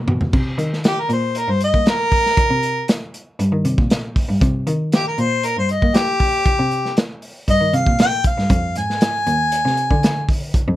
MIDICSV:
0, 0, Header, 1, 4, 480
1, 0, Start_track
1, 0, Key_signature, -3, "minor"
1, 0, Tempo, 510204
1, 315, Time_signature, 4, 2, 24, 8
1, 10124, End_track
2, 0, Start_track
2, 0, Title_t, "Harmonica"
2, 0, Program_c, 0, 22
2, 823, Note_on_c, 0, 67, 83
2, 941, Note_on_c, 0, 70, 69
2, 955, Note_off_c, 0, 67, 0
2, 1038, Note_off_c, 0, 70, 0
2, 1063, Note_on_c, 0, 72, 67
2, 1298, Note_on_c, 0, 70, 86
2, 1313, Note_off_c, 0, 72, 0
2, 1418, Note_on_c, 0, 72, 75
2, 1432, Note_off_c, 0, 70, 0
2, 1517, Note_off_c, 0, 72, 0
2, 1540, Note_on_c, 0, 75, 81
2, 1761, Note_off_c, 0, 75, 0
2, 1772, Note_on_c, 0, 70, 101
2, 2695, Note_off_c, 0, 70, 0
2, 4653, Note_on_c, 0, 67, 85
2, 4760, Note_off_c, 0, 67, 0
2, 4776, Note_on_c, 0, 70, 70
2, 4890, Note_on_c, 0, 72, 84
2, 4904, Note_off_c, 0, 70, 0
2, 5131, Note_on_c, 0, 70, 83
2, 5145, Note_off_c, 0, 72, 0
2, 5239, Note_off_c, 0, 70, 0
2, 5255, Note_on_c, 0, 72, 77
2, 5356, Note_off_c, 0, 72, 0
2, 5372, Note_on_c, 0, 75, 78
2, 5606, Note_on_c, 0, 67, 95
2, 5620, Note_off_c, 0, 75, 0
2, 6532, Note_off_c, 0, 67, 0
2, 7056, Note_on_c, 0, 75, 103
2, 7293, Note_on_c, 0, 77, 86
2, 7307, Note_off_c, 0, 75, 0
2, 7517, Note_off_c, 0, 77, 0
2, 7541, Note_on_c, 0, 79, 97
2, 7761, Note_off_c, 0, 79, 0
2, 7776, Note_on_c, 0, 77, 84
2, 8232, Note_off_c, 0, 77, 0
2, 8257, Note_on_c, 0, 80, 101
2, 9649, Note_off_c, 0, 80, 0
2, 10124, End_track
3, 0, Start_track
3, 0, Title_t, "Cello"
3, 0, Program_c, 1, 42
3, 71, Note_on_c, 1, 47, 81
3, 289, Note_off_c, 1, 47, 0
3, 314, Note_on_c, 1, 48, 85
3, 428, Note_off_c, 1, 48, 0
3, 546, Note_on_c, 1, 51, 82
3, 993, Note_off_c, 1, 51, 0
3, 1029, Note_on_c, 1, 46, 84
3, 1367, Note_off_c, 1, 46, 0
3, 1392, Note_on_c, 1, 43, 91
3, 1616, Note_off_c, 1, 43, 0
3, 1636, Note_on_c, 1, 58, 64
3, 2320, Note_off_c, 1, 58, 0
3, 2355, Note_on_c, 1, 48, 75
3, 2578, Note_off_c, 1, 48, 0
3, 3189, Note_on_c, 1, 43, 93
3, 3306, Note_off_c, 1, 43, 0
3, 3312, Note_on_c, 1, 51, 82
3, 3422, Note_off_c, 1, 51, 0
3, 3433, Note_on_c, 1, 48, 88
3, 3548, Note_off_c, 1, 48, 0
3, 3556, Note_on_c, 1, 46, 73
3, 4000, Note_off_c, 1, 46, 0
3, 4031, Note_on_c, 1, 43, 94
3, 4142, Note_off_c, 1, 43, 0
3, 4155, Note_on_c, 1, 48, 100
3, 4269, Note_off_c, 1, 48, 0
3, 4392, Note_on_c, 1, 51, 87
3, 4836, Note_off_c, 1, 51, 0
3, 4875, Note_on_c, 1, 46, 85
3, 5211, Note_off_c, 1, 46, 0
3, 5237, Note_on_c, 1, 43, 75
3, 5459, Note_off_c, 1, 43, 0
3, 5478, Note_on_c, 1, 58, 78
3, 6161, Note_off_c, 1, 58, 0
3, 6201, Note_on_c, 1, 48, 84
3, 6422, Note_off_c, 1, 48, 0
3, 7038, Note_on_c, 1, 43, 85
3, 7151, Note_off_c, 1, 43, 0
3, 7158, Note_on_c, 1, 51, 67
3, 7266, Note_off_c, 1, 51, 0
3, 7277, Note_on_c, 1, 48, 89
3, 7391, Note_off_c, 1, 48, 0
3, 7400, Note_on_c, 1, 46, 76
3, 7843, Note_off_c, 1, 46, 0
3, 7881, Note_on_c, 1, 43, 79
3, 7988, Note_off_c, 1, 43, 0
3, 7998, Note_on_c, 1, 41, 98
3, 8111, Note_off_c, 1, 41, 0
3, 8242, Note_on_c, 1, 44, 72
3, 8682, Note_off_c, 1, 44, 0
3, 8717, Note_on_c, 1, 39, 83
3, 9052, Note_off_c, 1, 39, 0
3, 9081, Note_on_c, 1, 48, 86
3, 9302, Note_off_c, 1, 48, 0
3, 9320, Note_on_c, 1, 50, 81
3, 10003, Note_off_c, 1, 50, 0
3, 10047, Note_on_c, 1, 41, 85
3, 10124, Note_off_c, 1, 41, 0
3, 10124, End_track
4, 0, Start_track
4, 0, Title_t, "Drums"
4, 72, Note_on_c, 9, 45, 80
4, 166, Note_off_c, 9, 45, 0
4, 195, Note_on_c, 9, 43, 74
4, 289, Note_off_c, 9, 43, 0
4, 310, Note_on_c, 9, 49, 87
4, 314, Note_on_c, 9, 36, 97
4, 404, Note_off_c, 9, 49, 0
4, 408, Note_off_c, 9, 36, 0
4, 552, Note_on_c, 9, 42, 56
4, 647, Note_off_c, 9, 42, 0
4, 688, Note_on_c, 9, 38, 32
4, 782, Note_off_c, 9, 38, 0
4, 791, Note_on_c, 9, 42, 72
4, 801, Note_on_c, 9, 38, 95
4, 885, Note_off_c, 9, 42, 0
4, 895, Note_off_c, 9, 38, 0
4, 1032, Note_on_c, 9, 42, 51
4, 1127, Note_off_c, 9, 42, 0
4, 1270, Note_on_c, 9, 42, 75
4, 1364, Note_off_c, 9, 42, 0
4, 1510, Note_on_c, 9, 42, 55
4, 1604, Note_off_c, 9, 42, 0
4, 1636, Note_on_c, 9, 36, 77
4, 1730, Note_off_c, 9, 36, 0
4, 1748, Note_on_c, 9, 42, 66
4, 1759, Note_on_c, 9, 38, 98
4, 1843, Note_off_c, 9, 42, 0
4, 1853, Note_off_c, 9, 38, 0
4, 1990, Note_on_c, 9, 46, 81
4, 1992, Note_on_c, 9, 36, 82
4, 2084, Note_off_c, 9, 46, 0
4, 2086, Note_off_c, 9, 36, 0
4, 2128, Note_on_c, 9, 38, 33
4, 2222, Note_off_c, 9, 38, 0
4, 2233, Note_on_c, 9, 36, 102
4, 2233, Note_on_c, 9, 42, 80
4, 2327, Note_off_c, 9, 36, 0
4, 2327, Note_off_c, 9, 42, 0
4, 2473, Note_on_c, 9, 42, 54
4, 2567, Note_off_c, 9, 42, 0
4, 2711, Note_on_c, 9, 42, 74
4, 2722, Note_on_c, 9, 38, 93
4, 2805, Note_off_c, 9, 42, 0
4, 2816, Note_off_c, 9, 38, 0
4, 2955, Note_on_c, 9, 42, 55
4, 3049, Note_off_c, 9, 42, 0
4, 3194, Note_on_c, 9, 42, 75
4, 3288, Note_off_c, 9, 42, 0
4, 3433, Note_on_c, 9, 42, 65
4, 3527, Note_off_c, 9, 42, 0
4, 3557, Note_on_c, 9, 36, 83
4, 3651, Note_off_c, 9, 36, 0
4, 3672, Note_on_c, 9, 42, 73
4, 3682, Note_on_c, 9, 38, 90
4, 3766, Note_off_c, 9, 42, 0
4, 3776, Note_off_c, 9, 38, 0
4, 3913, Note_on_c, 9, 36, 87
4, 3915, Note_on_c, 9, 46, 79
4, 4007, Note_off_c, 9, 36, 0
4, 4010, Note_off_c, 9, 46, 0
4, 4153, Note_on_c, 9, 36, 114
4, 4153, Note_on_c, 9, 42, 84
4, 4247, Note_off_c, 9, 36, 0
4, 4247, Note_off_c, 9, 42, 0
4, 4393, Note_on_c, 9, 42, 64
4, 4487, Note_off_c, 9, 42, 0
4, 4632, Note_on_c, 9, 42, 75
4, 4643, Note_on_c, 9, 38, 105
4, 4726, Note_off_c, 9, 42, 0
4, 4737, Note_off_c, 9, 38, 0
4, 4874, Note_on_c, 9, 42, 54
4, 4968, Note_off_c, 9, 42, 0
4, 5112, Note_on_c, 9, 42, 79
4, 5206, Note_off_c, 9, 42, 0
4, 5353, Note_on_c, 9, 42, 57
4, 5447, Note_off_c, 9, 42, 0
4, 5477, Note_on_c, 9, 36, 78
4, 5572, Note_off_c, 9, 36, 0
4, 5592, Note_on_c, 9, 42, 76
4, 5602, Note_on_c, 9, 38, 89
4, 5686, Note_off_c, 9, 42, 0
4, 5696, Note_off_c, 9, 38, 0
4, 5834, Note_on_c, 9, 36, 81
4, 5834, Note_on_c, 9, 46, 78
4, 5928, Note_off_c, 9, 36, 0
4, 5928, Note_off_c, 9, 46, 0
4, 6073, Note_on_c, 9, 42, 73
4, 6074, Note_on_c, 9, 36, 107
4, 6167, Note_off_c, 9, 42, 0
4, 6168, Note_off_c, 9, 36, 0
4, 6315, Note_on_c, 9, 42, 52
4, 6410, Note_off_c, 9, 42, 0
4, 6448, Note_on_c, 9, 38, 26
4, 6542, Note_off_c, 9, 38, 0
4, 6555, Note_on_c, 9, 42, 66
4, 6565, Note_on_c, 9, 38, 102
4, 6649, Note_off_c, 9, 42, 0
4, 6659, Note_off_c, 9, 38, 0
4, 6794, Note_on_c, 9, 46, 63
4, 6888, Note_off_c, 9, 46, 0
4, 7036, Note_on_c, 9, 36, 66
4, 7036, Note_on_c, 9, 42, 79
4, 7130, Note_off_c, 9, 36, 0
4, 7130, Note_off_c, 9, 42, 0
4, 7277, Note_on_c, 9, 42, 58
4, 7371, Note_off_c, 9, 42, 0
4, 7399, Note_on_c, 9, 36, 79
4, 7493, Note_off_c, 9, 36, 0
4, 7514, Note_on_c, 9, 42, 74
4, 7524, Note_on_c, 9, 38, 95
4, 7608, Note_off_c, 9, 42, 0
4, 7619, Note_off_c, 9, 38, 0
4, 7753, Note_on_c, 9, 42, 60
4, 7756, Note_on_c, 9, 36, 89
4, 7847, Note_off_c, 9, 42, 0
4, 7850, Note_off_c, 9, 36, 0
4, 7890, Note_on_c, 9, 38, 33
4, 7984, Note_off_c, 9, 38, 0
4, 7994, Note_on_c, 9, 42, 81
4, 7997, Note_on_c, 9, 36, 100
4, 8088, Note_off_c, 9, 42, 0
4, 8091, Note_off_c, 9, 36, 0
4, 8237, Note_on_c, 9, 42, 56
4, 8331, Note_off_c, 9, 42, 0
4, 8372, Note_on_c, 9, 38, 31
4, 8466, Note_off_c, 9, 38, 0
4, 8475, Note_on_c, 9, 42, 81
4, 8485, Note_on_c, 9, 38, 97
4, 8569, Note_off_c, 9, 42, 0
4, 8580, Note_off_c, 9, 38, 0
4, 8718, Note_on_c, 9, 42, 58
4, 8812, Note_off_c, 9, 42, 0
4, 8955, Note_on_c, 9, 42, 82
4, 9049, Note_off_c, 9, 42, 0
4, 9090, Note_on_c, 9, 38, 31
4, 9184, Note_off_c, 9, 38, 0
4, 9194, Note_on_c, 9, 42, 55
4, 9288, Note_off_c, 9, 42, 0
4, 9319, Note_on_c, 9, 36, 79
4, 9413, Note_off_c, 9, 36, 0
4, 9438, Note_on_c, 9, 42, 71
4, 9448, Note_on_c, 9, 38, 87
4, 9532, Note_off_c, 9, 42, 0
4, 9542, Note_off_c, 9, 38, 0
4, 9677, Note_on_c, 9, 36, 86
4, 9680, Note_on_c, 9, 46, 84
4, 9771, Note_off_c, 9, 36, 0
4, 9775, Note_off_c, 9, 46, 0
4, 9916, Note_on_c, 9, 36, 98
4, 9918, Note_on_c, 9, 42, 75
4, 10010, Note_off_c, 9, 36, 0
4, 10012, Note_off_c, 9, 42, 0
4, 10124, End_track
0, 0, End_of_file